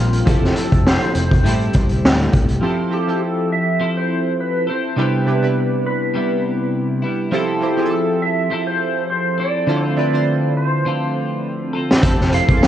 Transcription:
Already playing: A#1 A#2 G3 A#3 C4 D4 F4 G4 A#4
0.00 F4
0.13 closed hi-hat
0.25 F3 A3 C4 E4 G4 A4, kick, closed hi-hat
0.29 C4 E4
0.44 snare
0.56 A4, closed hi-hat
0.72 F1, kick, closed hi-hat
0.87 C5, snare
1.01 closed hi-hat
1.15 F1 C5, closed hi-hat
1.31 kick, closed hi-hat
1.43 A2 G3 A3 C4 E4 G4 A4, closed hi-hat
1.48 E4
1.60 closed hi-hat
1.73 C2, kick, closed hi-hat
1.89 closed hi-hat
2.03 D2, snare
2.21 closed hi-hat
2.33 C2, kick, closed hi-hat
2.48 closed hi-hat
2.61 F3 C4 E4 G4 A4
2.65 A4
2.90 F3 C4 E4 G4 A4
3.07 F3 C4 E4 G4 A4
3.23 A4
3.52 E5
3.80 F3 C4 E4 A4
3.97 C5
4.40 B4
4.67 C4 E4 A4 C5
4.96 C3 G3 B3 D4 E4 G4 B4
5.01 E4
5.26 C3 D4 E4 G4 B4
5.42 C3 D4 E4 G4 B4
5.87 B4
6.14 C3 G3 B3 E4
7.02 G3 B3 E4
7.31 F3 C4 E4 G4 A4
7.36 A4
7.60 F3 C4 E4 G4 C5
7.77 F3 C4 E4 G4 G#4
7.85 A4
7.93 A4
8.22 E5
8.50 F3 C4 E4 A4
8.67 C5
9.10 C5
9.38 C4 E4 A4 D5
9.67 D3 F3 A3 C4 E4 F4 A4
9.72 A4
9.82 C5
9.96 D3 C4 E4 F4 B4 D5
10.12 D3 C4 E4 F4 C5
10.57 C5
10.85 D3 C4 F4 A4
11.73 C4 F4 A4
11.91 snare
12.02 F1 F3 A3 C4 E4 G4 A4, kick, closed hi-hat
12.07 A4
12.21 snare
12.31 C4 E4 G4 C5 F5, closed hi-hat
12.48 C2 E3 C4 G4 G#4, kick, closed hi-hat
12.57 A4
12.63 F2, snare

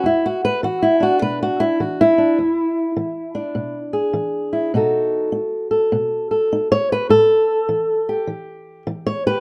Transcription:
0.03 E2 E4
0.26 F#4
0.45 B4
0.63 E3 F#4
0.82 E4
1.00 D4 F#4
1.22 B2 B4
1.43 F#4
1.60 E4
1.80 E3 F#4
2.01 E4
2.18 D4
2.38 E2
2.96 E3
3.35 D4
3.55 B2
3.93 G#4
4.13 E3
4.53 E4
4.74 B2 D#4 F#4 A4
5.32 D#4
5.71 A4
5.92 B2
6.31 A4
6.53 D#4
6.72 C#5
6.92 B4
7.09 A2 A4
7.69 E3
8.09 G4
8.27 E3
8.87 E3
9.07 C#5
9.27 G4 B4

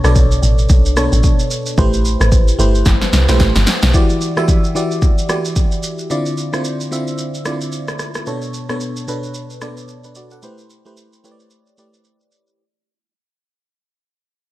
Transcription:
Already playing: B2 B3 D4 A4 C#5
0.04 B1 B2 B3 D4 A4 D5, cross-stick, shaker
0.15 kick, shaker
0.31 shaker
0.42 A1, shaker
0.58 shaker
0.69 B1, kick, shaker
0.86 shaker
0.96 B2 B3 D4 A4 C#5, cross-stick, shaker
1.12 A1, shaker
1.23 kick, shaker
1.39 shaker
1.51 shaker
1.66 shaker
1.78 A1 A3 E4 G4 B4 C5, kick, shaker
1.93 shaker
2.05 shaker
2.20 A1, cross-stick, shaker
2.32 kick, shaker
2.48 shaker
2.59 G1 A3 E4 G4 B4 C5, shaker
2.75 shaker
2.85 G1, kick, snare, shaker
3.02 snare, shaker
3.13 C2, snare, shaker
3.29 B1 A3 E4 G4 B4 C5, snare, shaker
3.39 A1, kick, snare, shaker
3.55 G1, snare, shaker
3.67 snare, shaker
3.82 B1, snare, shaker
3.94 E3 E4 F#4 G4 D5, kick, shaker
4.09 shaker
4.21 shaker
4.36 E3 E4 F#4 G4 E5, cross-stick, shaker
4.48 kick, shaker
4.64 shaker
4.75 E3 E4 F#4 G4 D5, shaker
4.91 shaker
5.02 kick, shaker
5.18 shaker
5.29 E3 E4 F#4 G4 D5, cross-stick, shaker
5.45 shaker
5.56 kick, shaker
5.72 shaker
5.83 shaker
5.99 shaker
6.10 D3 C4 E4 F4 D5, shaker
6.26 shaker
6.38 shaker
6.53 D3 C4 E4 F4 C5, cross-stick, shaker
6.64 shaker
6.80 shaker
6.91 D3 C4 E4 F4 E5, shaker
7.07 shaker
7.18 shaker
7.34 shaker
7.45 D3 C4 E4 F4 D5, cross-stick, shaker
7.61 shaker
7.72 shaker
7.88 cross-stick, shaker
7.99 cross-stick, shaker
8.14 cross-stick, shaker
8.26 B2 B3 D4 A4 C#5, shaker
8.42 shaker
8.54 shaker
8.69 B2 B3 D4 A4 C#5, cross-stick, shaker
8.80 shaker
8.96 shaker
9.08 B2 B3 D4 A4 B4, shaker
9.23 shaker
9.34 shaker
9.50 shaker
9.61 B2 B3 D4 A4 D5, cross-stick, shaker
9.77 shaker
9.88 shaker
10.04 D4 B4, shaker
10.15 F#4 D5, shaker
10.31 A4 F#5, shaker
10.43 A3 E4 G4 B4 C5, shaker
10.58 shaker
10.70 shaker
10.85 A3 E4 G4 B4 C5, shaker
10.97 shaker
11.13 shaker
11.24 A3 E4 G4 B4 C#5, shaker
11.31 D5
11.40 shaker
11.50 shaker
11.67 shaker
11.78 A3 E4 G4 B4 D5, shaker
11.94 shaker
12.04 shaker
12.20 shaker
12.32 shaker
12.47 shaker

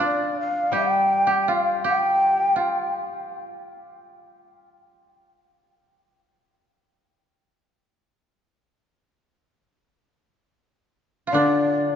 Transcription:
Already playing: C4 F4
0.00 D4
0.05 D5
0.40 F5
0.72 G3 G4
0.77 G5
1.27 G4
1.43 G5
1.48 F4 F5
1.84 G4 G5
2.56 F4
11.27 F4
11.32 D3 D4 D5

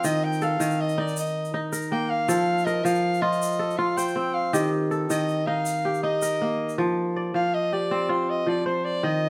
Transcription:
Already playing: C4 F4 A4
0.04 D#3 D#5, shaker
0.24 G5
0.32 shaker
0.42 A4 F5, shaker
0.60 D#3, shaker
0.70 shaker
0.81 D#5
0.89 shaker
0.98 D#4 D5
1.08 shaker
1.17 D#5, shaker
1.26 shaker
1.45 shaker
1.54 D#4
1.72 A#4, shaker
1.82 shaker
1.92 A#3 G5
2.10 F5
2.29 F3 A4, shaker
2.58 shaker
2.65 A#4 D#5, shaker
2.85 F3 F5, shaker
2.95 shaker
3.14 shaker
3.22 F4 D#5
3.33 shaker
3.42 shaker
3.52 shaker
3.59 A4
3.70 shaker
3.78 F4 F5
3.97 C5 G5, shaker
4.08 shaker
4.16 C4
4.34 F5
4.53 D#3 G4 D#5, shaker
4.91 A4, shaker
5.10 D#3 D#5, shaker
5.29 shaker
5.47 D#4 F5
5.66 shaker
5.85 G4
5.94 shaker
6.03 D#4 D#5
6.22 A#4, shaker
6.42 A#3
6.69 shaker
6.78 F3
7.16 D5
7.34 F3 F5
7.54 D#5
7.73 G4 D5
7.91 C4
8.09 F4 C5
8.30 D#5
8.46 F3 D5
8.66 C5
8.85 D5
9.03 D#3 D#5

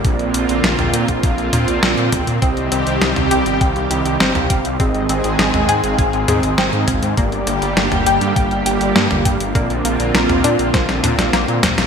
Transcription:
Already playing: D3 A#3
0.04 A#1 A#2 C4 F4 A#4 D5, kick, closed hi-hat
0.19 A#1, closed hi-hat
0.34 A#1, closed hi-hat
0.49 A#1 A#2 C4 A#4 D5, closed hi-hat
0.64 A#1, snare, closed hi-hat
0.79 A#1 A#2 C4 A#4 G5, closed hi-hat, mid tom
0.93 A#2, closed hi-hat
1.08 A#1 A#2 C4 A#4 F5, kick, closed hi-hat
1.23 A#1, kick, closed hi-hat
1.38 A#1, closed hi-hat
1.53 A#2, closed hi-hat, mid tom
1.68 A#1 A#2 C4 A#4 D5, closed hi-hat
1.83 A#1, snare, closed hi-hat
1.97 A#2, closed hi-hat
2.12 A#1 C3 C4 A#4 G5, kick, closed hi-hat, mid tom
2.27 A#2, closed hi-hat
2.42 C2 C3 D#3 G3 C4 G4 D#5, kick, closed hi-hat
2.57 C2, closed hi-hat
2.72 C2 C4, closed hi-hat
2.87 C2 C3 C4 G4 D#5, closed hi-hat
3.01 C2 D#5, snare, closed hi-hat
3.16 C2 C3 C4 G4 G5, closed hi-hat, mid tom
3.31 C2 G4, closed hi-hat
3.46 G1 C3 C4 G4 F5, closed hi-hat
3.61 C2 G5, kick, closed hi-hat
3.76 C2, closed hi-hat
3.91 C2 C3 C4 G4 D#5, closed hi-hat
4.05 C2, closed hi-hat
4.20 G1 C4, snare, closed hi-hat
4.35 C2 C3 C4 G4 F5, closed hi-hat, mid tom
4.50 G1 G5, kick, closed hi-hat
4.65 C2, closed hi-hat
4.80 G#1 G#2 D#3 G#3 C4 G#4 D#5, kick, closed hi-hat
4.95 G#1, closed hi-hat
5.09 G#1 C4, closed hi-hat
5.24 G#1 G#2 C4 G#4 D#5, closed hi-hat
5.39 G#1 D#5, snare, closed hi-hat
5.54 G#1 G#2 C4 G#4 G#5, closed hi-hat, mid tom
5.68 G#2 G#4, closed hi-hat
5.84 G#1 G#2 C4 G#4 F5, closed hi-hat
5.98 G#1 G#5, kick, closed hi-hat
6.13 G#1, closed hi-hat
6.28 G#2 C4 G#4 D#5, closed hi-hat, mid tom
6.43 G#1, closed hi-hat
6.58 G#1 C4, snare, closed hi-hat
6.73 G#2 C4 G#4 F5, closed hi-hat
6.88 G#1 G#5, kick, closed hi-hat, mid tom
7.02 G#2, closed hi-hat
7.17 G1 G2 D3 G3 A#3 G4 D5, kick, closed hi-hat
7.32 G1, closed hi-hat
7.47 G1 A#3, closed hi-hat
7.62 G1 G2 A#3 G4 D5, closed hi-hat
7.77 G1 D5, snare, closed hi-hat
7.91 G1 G2 A#3 G4 G5, closed hi-hat, mid tom
8.06 G1 G4, closed hi-hat
8.21 G2 A#3 G4 F5, closed hi-hat
8.36 G1 G5, kick, closed hi-hat
8.51 G1, closed hi-hat
8.66 G1 G2 A#3 G4 D5, closed hi-hat
8.81 G1, closed hi-hat
8.96 G2 A#3, snare, closed hi-hat
9.10 G1 G2 A#3 G4 F5, closed hi-hat, mid tom
9.25 G2 G5, kick, closed hi-hat
9.40 G1, closed hi-hat
9.55 A#1 A#2 A#3 C4 F4 A#4 D5, kick, closed hi-hat
9.70 A#1, closed hi-hat
9.85 A#1 A#3, closed hi-hat
9.99 A#1 A#2 C4 A#4 D5, closed hi-hat
10.14 A#1 A#4, snare, closed hi-hat
10.29 A#1 A#2 C4 A#4 G5, closed hi-hat, mid tom
10.44 A#2 D4, closed hi-hat
10.59 A#1 A#2 C4 A#4 F5, closed hi-hat
10.74 A#1 C5, kick, snare, closed hi-hat
10.89 A#1, snare, closed hi-hat
11.03 A#2 C4 D4 D5, closed hi-hat, mid tom
11.18 A#1, snare, closed hi-hat
11.33 A#1 A#3, snare, closed hi-hat
11.48 A#2 C4 A#4 F5, closed hi-hat
11.63 A#1 C5, kick, snare, closed hi-hat, mid tom
11.78 A#1, snare, closed hi-hat

